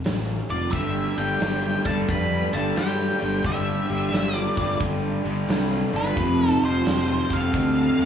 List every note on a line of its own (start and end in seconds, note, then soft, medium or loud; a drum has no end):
0.04 0.39 A1 medium
0.04 snare loud
0.04 open hi-hat medium
0.49 0.67 F1 medium
0.49 0.72 F4 medium
0.49 0.71 D5 medium
0.49 open hi-hat soft
0.71 1.07 G1 medium
0.71 1.16 G2 medium
0.71 1.16 D3 medium
0.71 1.18 G3 medium
0.71 1.14 G4 medium
0.71 1.18 E5 medium
0.71 kick loud
0.71 open hi-hat medium
1.16 1.35 G1 medium
1.16 1.40 G2 medium
1.16 1.41 D3 medium
1.16 1.41 G3 loud
1.16 1.82 G4 medium
1.16 1.86 G5 medium
1.16 open hi-hat soft
1.40 1.75 G1 medium
1.40 1.85 G2 medium
1.40 1.85 D3 medium
1.40 1.87 G3 medium
1.40 snare loud
1.40 open hi-hat medium
1.85 2.03 G1 medium
1.85 2.07 G2 medium
1.85 2.08 D3 medium
1.85 2.08 G3 loud
1.85 2.08 A4 medium
1.85 2.10 A5 medium
1.85 kick medium
1.85 open hi-hat soft
2.08 2.43 F2 medium
2.08 2.52 G2 medium
2.08 2.53 D3 medium
2.08 2.53 G3 medium
2.08 2.51 B4 medium
2.08 2.55 B5 loud
2.08 kick medium
2.08 open hi-hat medium
2.53 2.71 G1 medium
2.53 2.74 G2 medium
2.53 2.75 D3 medium
2.53 2.76 G3 medium
2.53 2.76 A4 medium
2.53 2.78 A5 medium
2.53 open hi-hat soft
2.75 3.18 G2 medium
2.75 3.11 G2 medium
2.75 3.19 D3 medium
2.75 3.20 G3 medium
2.75 3.41 G4 medium
2.75 3.42 G5 medium
2.75 snare loud
2.75 open hi-hat medium
3.00 snare soft
3.19 3.40 G1 medium
3.19 3.43 G2 medium
3.19 3.44 D3 medium
3.19 3.44 G3 medium
3.19 open hi-hat soft
3.44 3.79 G1 medium
3.44 3.87 G2 medium
3.44 3.88 D3 medium
3.44 3.89 G3 loud
3.44 4.34 G4 medium
3.44 4.35 E5 medium
3.44 kick loud
3.44 open hi-hat medium
3.89 4.08 G1 medium
3.89 4.10 G2 medium
3.89 4.11 D3 medium
3.89 4.12 G3 medium
3.89 open hi-hat soft
4.11 4.46 G1 medium
4.11 4.54 G2 medium
4.11 4.55 D3 medium
4.11 4.56 G3 medium
4.11 snare loud
4.11 open hi-hat medium
4.34 4.77 F4 medium
4.34 4.78 D5 medium
4.56 4.75 G1 medium
4.56 4.78 G2 medium
4.56 4.79 D3 medium
4.56 4.80 G3 medium
4.56 kick medium
4.56 open hi-hat soft
4.79 5.15 G1 medium
4.79 5.22 G2 medium
4.79 5.23 D3 medium
4.79 5.24 G3 medium
4.79 kick medium
4.79 open hi-hat medium
5.24 5.43 G1 medium
5.24 5.47 G2 medium
5.24 5.47 D3 medium
5.24 5.48 G3 medium
5.24 open hi-hat medium
5.48 5.83 C2 medium
5.48 5.91 G2 medium
5.48 5.92 D3 medium
5.48 5.93 G3 medium
5.48 snare loud
5.48 open hi-hat medium
5.93 6.11 G1 medium
5.93 6.16 G2 medium
5.93 6.16 D3 medium
5.93 6.16 G3 medium
5.93 6.48 B4 medium
5.93 open hi-hat soft
5.99 6.46 F4 medium
6.16 6.51 F1 loud
6.16 6.60 F2 medium
6.16 6.60 C3 medium
6.16 6.61 F3 loud
6.16 kick medium
6.16 open hi-hat medium
6.46 6.61 D#4 medium
6.46 6.65 A4 medium
6.61 6.80 F1 medium
6.61 6.84 F2 medium
6.61 6.85 C3 medium
6.61 6.85 F3 medium
6.61 open hi-hat soft
6.65 7.29 F4 medium
6.65 7.34 C5 medium
6.85 7.20 F1 medium
6.85 7.29 F2 medium
6.85 7.30 C3 medium
6.85 7.30 F3 medium
6.85 snare loud
6.85 open hi-hat medium
7.30 7.48 F1 medium
7.30 7.53 F2 medium
7.30 7.53 C3 medium
7.30 7.54 F3 medium
7.30 8.05 F5 medium
7.30 kick medium
7.30 open hi-hat soft
7.34 8.05 A4 medium
7.54 7.88 D2 medium
7.54 7.98 F2 medium
7.54 7.98 C3 medium
7.54 7.99 F3 medium
7.54 kick loud
7.54 open hi-hat medium
7.99 8.05 F1 medium
7.99 8.05 F2 medium
7.99 8.05 C3 medium
7.99 8.05 F3 medium
7.99 open hi-hat soft